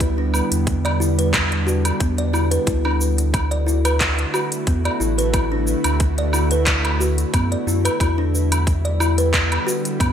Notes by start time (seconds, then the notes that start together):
Already playing: D2 D3 G3 B3
0.00 D4 E4, kick, closed hi-hat, shaker
0.18 D4
0.34 low woodblock, shaker
0.52 E2, closed hi-hat, shaker
0.67 kick, closed hi-hat, shaker
0.85 D5, closed hi-hat, low woodblock
1.00 E4, shaker
1.19 B4, closed hi-hat, shaker
1.34 kick, clap, closed hi-hat, low woodblock, shaker
1.52 closed hi-hat
1.67 F#4, shaker
1.85 closed hi-hat, low woodblock, shaker
2.00 E2 B3, kick, closed hi-hat, shaker
2.18 D5, closed hi-hat
2.33 E4, low woodblock, shaker
2.51 B4, closed hi-hat, shaker
2.66 D2 D3 A3 E4 F#4, kick, closed hi-hat, shaker
2.85 D4, low woodblock
3.01 shaker
3.18 closed hi-hat, shaker
3.34 kick, closed hi-hat, low woodblock, shaker
3.51 D5, closed hi-hat
3.67 E4, shaker
3.85 B4, closed hi-hat, low woodblock, shaker
4.00 kick, clap, closed hi-hat, shaker
4.19 closed hi-hat
4.34 F#4, low woodblock, shaker
4.52 closed hi-hat, shaker
4.67 E2 B3, kick, closed hi-hat, shaker
4.85 D5, closed hi-hat, low woodblock
5.00 A1 E4, shaker
5.18 B4, closed hi-hat, shaker
5.33 E4, kick, closed hi-hat, low woodblock, shaker
5.52 D4
5.67 shaker
5.84 D2, closed hi-hat, low woodblock, shaker
6.00 kick, closed hi-hat, shaker
6.18 D5, closed hi-hat
6.33 E4, low woodblock, shaker
6.51 B4, closed hi-hat, shaker
6.67 kick, clap, closed hi-hat, shaker
6.85 closed hi-hat, low woodblock
7.00 F#4, shaker
7.18 closed hi-hat, shaker
7.34 F#2 B3, kick, closed hi-hat, low woodblock, shaker
7.52 D5, closed hi-hat
7.67 F#2 E4, shaker
7.85 B4, closed hi-hat, low woodblock, shaker
8.00 E2 D3 G3 B3 E4, kick, closed hi-hat, low woodblock, shaker
8.18 D4
8.35 shaker
8.52 closed hi-hat, low woodblock, shaker
8.67 kick, closed hi-hat, shaker
8.85 D5, closed hi-hat
9.00 E4, low woodblock, shaker
9.18 B4, closed hi-hat, shaker
9.34 kick, clap, closed hi-hat, shaker
9.52 closed hi-hat, low woodblock
9.67 F#4, shaker
9.85 closed hi-hat, shaker
10.00 F#2 B3, kick, closed hi-hat, low woodblock, shaker